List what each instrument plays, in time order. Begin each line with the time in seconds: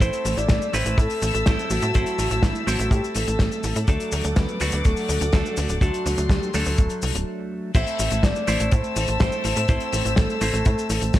0.00 analog synth bass A1, clean electric guitar A3 C4 E4 C5, string section A4 E5 A5 E6, soft synth lead C5, kick, closed hi-hat, cabasa
0.13 closed hi-hat, cabasa
0.25 analog synth bass A1, open hi-hat, cabasa
0.37 analog synth bass A1, soft synth lead D5, closed hi-hat, cabasa
0.48 analog synth bass A1, kick, snare, closed hi-hat, cabasa
0.62 cabasa
0.73 analog synth bass A1, clean electric guitar A3 C4 E4 B4, soft synth lead C5, open hi-hat, cabasa
0.86 analog synth bass A1, closed hi-hat, cabasa
0.98 analog synth bass A2, soft synth lead A4, kick, closed hi-hat, cabasa
1.10 open hi-hat, cabasa
1.22 analog synth bass A1, open hi-hat, cabasa
1.34 analog synth bass A1, soft synth lead A4, closed hi-hat, cabasa
1.46 analog synth bass A1, clean electric guitar A3 C4 E4 C5, kick, snare, closed hi-hat, cabasa
1.59 cabasa
1.70 analog synth bass A1, soft synth lead F#4, open hi-hat, cabasa
1.82 analog synth bass A2, closed hi-hat, cabasa
1.94 analog synth bass A1, clean electric guitar A3 C4 E4 C5, kick, closed hi-hat, cabasa
2.06 closed hi-hat, cabasa
2.19 analog synth bass A1, open hi-hat, cabasa
2.31 analog synth bass A1, closed hi-hat, cabasa
2.43 analog synth bass A1, soft synth lead E4, kick, snare, closed hi-hat, cabasa
2.55 cabasa
2.67 analog synth bass A1, clean electric guitar A3 C4 E4 C5, soft synth lead F#4, open hi-hat, cabasa
2.79 analog synth bass A1, closed hi-hat, cabasa
2.91 analog synth bass A2, soft synth lead G4, kick, closed hi-hat, cabasa
3.04 cabasa
3.15 analog synth bass A1, soft synth lead A4, open hi-hat, cabasa
3.28 analog synth bass A1, closed hi-hat, cabasa
3.39 analog synth bass A1, kick, snare, closed hi-hat, cabasa
3.52 cabasa
3.63 analog synth bass A1, open hi-hat, cabasa
3.76 analog synth bass A2, closed hi-hat, cabasa
3.88 analog synth bass D2, clean electric guitar F#3 A3 D4 A4, soft synth lead A4, string section D5 F#5 D6, kick, closed hi-hat, cabasa
4.00 closed hi-hat, cabasa
4.12 analog synth bass D2, open hi-hat, cabasa
4.24 analog synth bass D2, closed hi-hat, cabasa
4.36 analog synth bass D2, soft synth lead B4, kick, snare, closed hi-hat, cabasa
4.49 cabasa
4.60 analog synth bass D2, clean electric guitar F#3 A3 D4 F#4, open hi-hat, cabasa
4.72 analog synth bass D2, closed hi-hat, cabasa
4.85 analog synth bass D1, soft synth lead A4, kick, closed hi-hat, cabasa
4.97 open hi-hat, cabasa
5.08 analog synth bass D2, open hi-hat, cabasa
5.21 analog synth bass D2, closed hi-hat, cabasa
5.33 analog synth bass D2, clean electric guitar F#3 A3 D4 A4, kick, snare, closed hi-hat, cabasa
5.46 cabasa
5.57 analog synth bass D2, open hi-hat, cabasa
5.69 analog synth bass D1, closed hi-hat, cabasa
5.81 analog synth bass D2, clean electric guitar F#3 A3 D4 A4, soft synth lead F#4, string section C6, kick, closed hi-hat, cabasa
5.94 closed hi-hat, cabasa
6.06 analog synth bass D2, open hi-hat, cabasa
6.18 analog synth bass D2, closed hi-hat, cabasa
6.29 analog synth bass D2, soft synth lead G4, kick, snare, closed hi-hat, cabasa
6.43 cabasa
6.54 analog synth bass D2, clean electric guitar F#3 A3 D4 A4, soft synth lead A4, snare, open hi-hat, cabasa
6.66 analog synth bass D2, open hi-hat, cabasa
6.78 analog synth bass D1, kick, closed hi-hat, cabasa
6.90 closed hi-hat, cabasa
7.02 analog synth bass C2, open hi-hat, cabasa
7.15 analog synth bass D1, closed hi-hat, cabasa
7.75 analog synth bass A1, clean electric guitar A3 C4 E4 C5, string section C5 E5 A5 E6, soft synth lead E5, kick, closed hi-hat, crash, cabasa
7.87 closed hi-hat, cabasa
7.99 analog synth bass A1, open hi-hat, cabasa
8.11 analog synth bass A1, closed hi-hat, cabasa
8.23 analog synth bass A1, soft synth lead D5, kick, snare, closed hi-hat, cabasa
8.36 cabasa
8.47 analog synth bass A1, clean electric guitar A3 C4 E4 C5, open hi-hat, cabasa
8.60 analog synth bass A1, closed hi-hat, cabasa
8.71 analog synth bass A2, soft synth lead C5, kick, closed hi-hat, cabasa
8.84 cabasa
8.96 analog synth bass A1, open hi-hat, cabasa
9.08 analog synth bass A1, closed hi-hat, cabasa
9.20 analog synth bass A1, clean electric guitar A3 C4 E4 C5, kick, snare, closed hi-hat, cabasa
9.32 cabasa
9.44 analog synth bass A1, open hi-hat, cabasa
9.56 analog synth bass A2, closed hi-hat, cabasa
9.68 analog synth bass A1, clean electric guitar A3 C4 E4 C5, soft synth lead C5, kick, closed hi-hat, cabasa
9.80 closed hi-hat, cabasa
9.93 analog synth bass A1, open hi-hat, cabasa
10.05 analog synth bass A1, closed hi-hat, cabasa
10.16 analog synth bass A1, soft synth lead A4, kick, snare, closed hi-hat, cabasa
10.30 cabasa
10.41 analog synth bass A1, clean electric guitar A3 C4 E4 C5, open hi-hat, cabasa
10.53 analog synth bass A1, closed hi-hat, cabasa
10.65 analog synth bass A2, kick, closed hi-hat, cabasa
10.79 cabasa
10.90 analog synth bass A1, open hi-hat, cabasa
11.01 analog synth bass A1, closed hi-hat, cabasa
11.14 analog synth bass A1, kick, snare, open hi-hat, cabasa